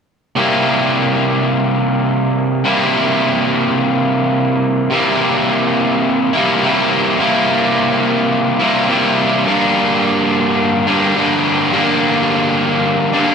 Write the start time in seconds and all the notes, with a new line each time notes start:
0.36 C3 G3 A#3 E4
2.64 C3 G3 A#3 E4
4.91 C3 G3 A#3 E4
6.33 C3 G3 A#3 E4
6.62 C3 G3 A#3 E4
7.18 C3 G3 A#3 E4
8.60 C3 G3 A#3 E4
8.88 C3 G3 A#3 E4
9.45 G2 D3 G3 A#3 D4
10.87 G2 D3 G3 A#3 D4
11.15 G2 D3 G3 A#3 D4
11.72 G2 D3 G3 A#3 D4
13.13 G2 D3 G3 A#3 D4